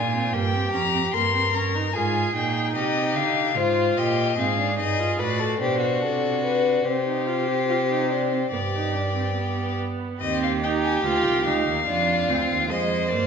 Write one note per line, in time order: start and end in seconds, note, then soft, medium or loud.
0.00 0.32 A#2 medium
0.00 0.35 F4 medium
0.00 0.35 G#5 medium
0.14 0.35 C4 medium
0.32 0.72 G2 medium
0.32 0.56 A#3 medium
0.32 1.15 G4 medium
0.32 0.72 G5 medium
0.54 0.73 C4 medium
0.73 1.13 F2 medium
0.73 0.81 C#4 medium
0.73 1.13 A#5 medium
0.94 1.02 C4 medium
1.14 1.93 G2 medium
1.14 1.33 A#3 medium
1.14 1.97 A#4 medium
1.14 1.56 C6 medium
1.34 1.42 C4 medium
1.53 1.76 C#4 medium
1.53 1.95 A#5 medium
1.74 1.93 D#4 medium
1.93 2.34 G#2 medium
1.93 2.34 F4 medium
1.93 2.75 G#4 medium
1.93 2.34 G#5 medium
2.34 2.75 A#2 medium
2.34 3.54 D#4 medium
2.34 2.75 G5 medium
2.76 3.18 C3 medium
2.76 3.55 G4 medium
2.76 3.17 D#5 medium
3.15 3.59 D3 medium
3.15 3.58 F5 medium
3.55 3.97 G#2 medium
3.55 4.36 F4 medium
3.55 4.00 F4 medium
3.55 3.99 C5 medium
3.98 4.38 A#2 medium
3.98 4.38 G4 medium
3.98 4.40 D#5 medium
4.38 4.80 G#2 medium
4.38 4.57 C4 medium
4.38 5.21 G#4 medium
4.38 4.78 F5 medium
4.58 4.78 D4 medium
4.78 5.19 G2 medium
4.78 5.00 D#4 medium
4.78 5.19 D#5 medium
4.98 5.21 F4 medium
5.19 5.60 A2 medium
5.19 5.61 F#4 medium
5.19 5.41 B4 medium
5.19 5.60 D5 medium
5.39 5.60 A4 medium
5.61 6.04 B2 medium
5.61 6.87 D4 medium
5.61 5.81 G4 medium
5.61 6.03 C5 medium
5.81 6.87 F#4 medium
6.02 6.85 C3 medium
6.02 6.43 A4 medium
6.44 6.85 B4 medium
6.85 8.49 C3 medium
6.85 7.05 C4 medium
6.85 8.52 G4 medium
6.85 8.49 C5 medium
7.05 7.28 D#4 medium
7.27 7.47 F4 medium
7.47 7.55 G4 medium
7.69 7.77 F4 medium
7.89 8.12 D#4 medium
8.11 8.32 D4 medium
8.33 8.41 C4 medium
8.51 9.77 G2 medium
8.51 8.61 B3 medium
8.51 9.77 G4 medium
8.51 9.76 D5 medium
8.74 8.96 D#4 medium
8.95 9.15 D4 medium
9.15 9.35 C4 medium
9.36 10.19 B3 medium
10.20 11.01 D#2 medium
10.20 10.60 C4 loud
10.20 11.84 G4 medium
10.20 10.40 D#5 medium
10.43 10.51 F5 medium
10.63 11.03 D#4 medium
10.63 10.71 G5 medium
10.83 11.03 G#5 medium
11.04 11.25 D2 medium
11.04 11.45 F4 medium
11.04 11.45 G5 medium
11.26 11.48 C2 medium
11.45 11.67 D2 medium
11.45 11.86 D#4 medium
11.45 12.68 F5 medium
11.67 11.87 D#2 medium
11.86 12.28 F2 medium
11.86 12.31 D4 medium
11.86 12.72 F4 medium
12.29 12.37 D2 medium
12.29 12.70 C4 medium
12.50 12.72 D#2 medium
12.71 13.14 F2 medium
12.71 13.11 G#3 medium
12.71 13.27 C5 medium
12.71 13.13 D#5 medium
13.11 13.27 G2 medium
13.11 13.27 A#3 medium
13.11 13.27 D5 medium